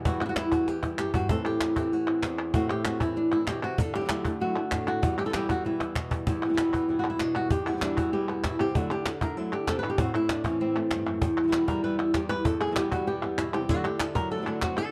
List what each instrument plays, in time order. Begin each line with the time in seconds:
Already playing: nylon-string guitar B3
0.05 nylon-string guitar E2 B2 E3 G3 B3 E4 F#4, cajon bass
0.21 nylon-string guitar E3 G3 B3 E4 F#4, cajon slap
0.26 nylon-string guitar E4 F#4
0.36 nylon-string guitar E3 G3 B3 E4, cajon slap, clap
0.52 nylon-string guitar E3 G3 B3 E4 F#4, cajon bass
0.68 nylon-string guitar G4, muted nylon-string guitar stroke, cajon slap
0.83 nylon-string guitar E3 G3 B3 E4, cajon bass
0.98 nylon-string guitar F#2 G4, clap
1.14 nylon-string guitar G2 F#4, cajon bass
1.29 nylon-string guitar A2 E3 A3 C4 E4 A4, cajon bass
1.46 nylon-string guitar G4
1.60 nylon-string guitar E3 A3 C4 E4, cajon slap, clap
1.76 nylon-string guitar E3 A3 C4 E4 G4, cajon bass, clap
1.92 nylon-string guitar F#4, muted nylon-string guitar stroke, cajon slap
2.07 nylon-string guitar A3 C4 E4
2.23 nylon-string guitar E2 C4, cajon slap, clap
2.54 nylon-string guitar A2 E3 A3 C4 E4 F#4, cajon bass
2.70 nylon-string guitar G4
2.85 nylon-string guitar E3 A3 C4 E4 F#4, cajon slap, clap
3.01 nylon-string guitar E3 A3 C4 E4, cajon bass
3.16 nylon-string guitar D4, muted nylon-string guitar stroke, cajon slap
3.32 nylon-string guitar A3 C4 E4
3.47 nylon-string guitar B2 G4, cajon slap, clap
3.63 nylon-string guitar C3 F#4
3.78 nylon-string guitar D3 A4, muted nylon-string guitar stroke, cajon bass
3.94 nylon-string guitar F#3 A3 D4 E4 G4, cajon slap
4.01 nylon-string guitar F#3 A3 D4 E4
4.05 nylon-string guitar F#3 A3 D4 E4
4.09 nylon-string guitar D3 F#3 A3 D4 E4, cajon slap, clap
4.25 nylon-string guitar A3 D4 E4, cajon bass, clap
4.40 nylon-string guitar D3 F#3 A3 D4 E4 F#4, cajon slap
4.56 nylon-string guitar A3 D4 E4
4.71 nylon-string guitar A2 D4, muted nylon-string guitar stroke, cajon bass, cajon slap, clap
4.88 nylon-string guitar F#4, cajon slap
5.02 nylon-string guitar E2 E3 G3 B3, muted nylon-string guitar stroke, cajon bass
5.19 nylon-string guitar B2 E3 G3 B3 E4 G4
5.24 nylon-string guitar B2 E3 G3 B3 E4 A4
5.29 nylon-string guitar B2 E3 G3 B3 E4
5.33 nylon-string guitar E2 B2 E3 G3 B3 E4 G4, cajon slap, clap
5.49 nylon-string guitar E3 G3 B3 E4 F#4, cajon bass
5.64 nylon-string guitar E2 B2 E3 G3 B3 E4
5.80 nylon-string guitar E3 G3 B3 E4, cajon slap
5.95 nylon-string guitar B2 B3, muted nylon-string guitar stroke, cajon bass, clap
6.11 nylon-string guitar G3, cajon bass
6.26 nylon-string guitar E2 E3 G3 B3 E4, muted nylon-string guitar stroke, cajon bass
6.42 nylon-string guitar B2 E3 G3 B3 E4
6.49 nylon-string guitar B2 E3 G3 B3 E4
6.53 nylon-string guitar B2 E3 G3 B3 E4
6.58 nylon-string guitar E2 B2 E3 G3 B3 E4, cajon slap, clap
6.73 nylon-string guitar E3 B3, cajon bass, clap
6.88 nylon-string guitar E2 B2 E3 G3 B3 E4
6.99 nylon-string guitar F#4
7.05 nylon-string guitar B3
7.10 nylon-string guitar E4
7.20 nylon-string guitar B2 D4, muted nylon-string guitar stroke, cajon slap, clap
7.35 nylon-string guitar E3 G3 B3 E4 F#4
7.51 nylon-string guitar E2 G4, muted nylon-string guitar stroke, cajon bass
7.66 nylon-string guitar B2 E3 G3 B3 E4 F#4, cajon slap
7.73 nylon-string guitar B2 E3 G3 B3 E4
7.77 nylon-string guitar B2 E3 G3 B3 E4
7.82 nylon-string guitar E2 B2 E3 G3 B3 D4 E4, cajon slap, clap
7.98 nylon-string guitar E3 F#4, cajon bass
8.13 nylon-string guitar E2 B2 E3 G3 B3 E4 G4
8.29 nylon-string guitar B3
8.44 nylon-string guitar B2 E4, muted nylon-string guitar stroke, cajon bass, cajon slap, clap
8.59 nylon-string guitar C3 E3 G3 B3 E4 G4
8.75 nylon-string guitar D3 F#3 A3 D4 E4 F#4, cajon bass
8.90 nylon-string guitar A3 D4 E4 G4
9.06 nylon-string guitar A4, muted nylon-string guitar stroke, cajon slap, clap
9.21 nylon-string guitar A3 D4 E4 A#4, cajon bass
9.36 nylon-string guitar D3 F#3 A3 D4 E4 A4
9.52 nylon-string guitar A3 D4 E4 G4
9.67 nylon-string guitar C3 A4, muted nylon-string guitar stroke, cajon bass, cajon slap, clap
9.79 nylon-string guitar E4 B4
9.84 nylon-string guitar B2 A3 D4
9.90 nylon-string guitar G4
9.98 nylon-string guitar A2 E3 A3 C4 E4 F#4, cajon bass
10.14 nylon-string guitar A3 C4 E4
10.29 nylon-string guitar D4, muted nylon-string guitar stroke, cajon slap, clap
10.44 nylon-string guitar E3 A3 C4 C#4 E4, cajon bass
10.60 nylon-string guitar A2 E3 A3 C4 E4
10.76 nylon-string guitar A3 C4 E4
10.91 nylon-string guitar G2, muted nylon-string guitar stroke, cajon slap, clap
11.06 nylon-string guitar F#2 A3 C4 E4
11.21 nylon-string guitar E2, muted nylon-string guitar stroke, cajon bass
11.38 nylon-string guitar E4
11.43 nylon-string guitar B2 E3 G3 B3 E4
11.48 nylon-string guitar B2 E3 G3 B3 E4
11.52 nylon-string guitar E2 B2 E3 G3 B3 E4, cajon slap, clap
11.68 nylon-string guitar G3 A#4, cajon bass
11.83 nylon-string guitar E2 B2 E3 G3 B3 E4 B4, cajon slap
11.99 nylon-string guitar E3 G3 B3 E4
12.14 nylon-string guitar E2 G4, muted nylon-string guitar stroke, cajon bass, cajon slap, clap
12.29 nylon-string guitar E3 G3 B3 E4 B4
12.45 nylon-string guitar E2 A4, muted nylon-string guitar stroke, cajon bass
12.61 nylon-string guitar G#4, cajon slap
12.67 nylon-string guitar B2 E3 G3 B3 E4
12.71 nylon-string guitar B2 E3 G3 B3 E4
12.76 nylon-string guitar E2 B2 E3 G3 B3 E4 G4, cajon slap, clap
12.92 nylon-string guitar G3 F#4, cajon bass
13.07 nylon-string guitar E2 B2 E3 G3 B3 E4 G4, cajon slap
13.22 nylon-string guitar E3 G3 B3 E4
13.38 nylon-string guitar B2 E4, muted nylon-string guitar stroke, cajon slap, clap
13.53 nylon-string guitar C3 E3 G3 B3 E4 G4
13.69 nylon-string guitar D3 F#3 A3 D4 E4 F#4, cajon bass
13.84 nylon-string guitar A3 D4 E4 G4
13.99 nylon-string guitar A3 D4 E4 A4, cajon slap, clap
14.15 nylon-string guitar F#3 A#4, cajon bass
14.31 nylon-string guitar F#3 D4 E4 A4, muted nylon-string guitar stroke
14.37 nylon-string guitar F#3 A3 D4 E4
14.42 nylon-string guitar F#3 A3 D4 E4
14.46 nylon-string guitar D3 F#3 A3 D4 E4
14.62 nylon-string guitar C3 F#3 A3 D4 E4 F#4, cajon bass, cajon slap, clap
14.77 nylon-string guitar D3 A3 D4 E4 A4